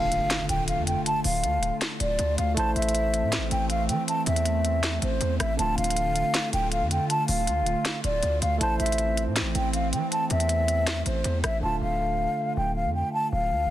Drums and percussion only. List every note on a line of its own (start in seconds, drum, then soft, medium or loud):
0.12 closed hi-hat medium
0.30 snare loud
0.30 clap loud
0.30 closed hi-hat medium
0.49 closed hi-hat medium
0.68 closed hi-hat medium
0.87 closed hi-hat medium
1.06 closed hi-hat medium
1.24 open hi-hat medium
1.44 closed hi-hat medium
1.63 closed hi-hat medium
1.81 snare loud
1.81 clap loud
1.81 closed hi-hat medium
2.00 closed hi-hat medium
2.19 closed hi-hat medium
2.38 closed hi-hat medium
2.57 closed hi-hat medium
2.76 closed hi-hat soft
2.82 closed hi-hat medium
2.89 closed hi-hat medium
2.95 closed hi-hat medium
3.14 closed hi-hat medium
3.32 snare loud
3.32 clap medium
3.32 closed hi-hat medium
3.51 closed hi-hat medium
3.70 closed hi-hat medium
3.89 closed hi-hat medium
4.08 closed hi-hat medium
4.26 closed hi-hat medium
4.26 open hi-hat medium
4.36 closed hi-hat medium
4.46 closed hi-hat medium
4.65 closed hi-hat medium
4.83 snare loud
4.83 clap loud
4.83 closed hi-hat medium
5.02 closed hi-hat medium
5.21 closed hi-hat medium
5.40 cross-stick medium
5.40 closed hi-hat medium
5.59 closed hi-hat medium
5.78 closed hi-hat soft
5.84 closed hi-hat medium
5.90 closed hi-hat medium
5.96 closed hi-hat medium
6.16 closed hi-hat medium
6.34 snare loud
6.34 clap loud
6.34 closed hi-hat medium
6.53 closed hi-hat medium
6.72 closed hi-hat medium
6.91 closed hi-hat medium
7.10 closed hi-hat medium
7.28 open hi-hat medium
7.47 closed hi-hat medium
7.66 closed hi-hat medium
7.85 snare loud
7.85 clap loud
7.85 closed hi-hat medium
8.04 closed hi-hat medium
8.23 closed hi-hat medium
8.42 closed hi-hat medium
8.61 closed hi-hat medium
8.80 closed hi-hat soft
8.86 closed hi-hat medium
8.92 closed hi-hat medium
8.98 closed hi-hat medium
9.17 closed hi-hat medium
9.36 snare loud
9.36 clap medium
9.36 closed hi-hat medium
9.55 closed hi-hat medium
9.73 closed hi-hat medium
9.93 closed hi-hat medium
10.12 closed hi-hat medium
10.30 closed hi-hat medium
10.30 open hi-hat medium
10.40 closed hi-hat medium
10.49 closed hi-hat medium
10.68 closed hi-hat medium
10.87 snare loud
10.87 clap loud
10.87 closed hi-hat medium
11.06 closed hi-hat medium
11.24 closed hi-hat medium
11.44 cross-stick medium
11.44 closed hi-hat medium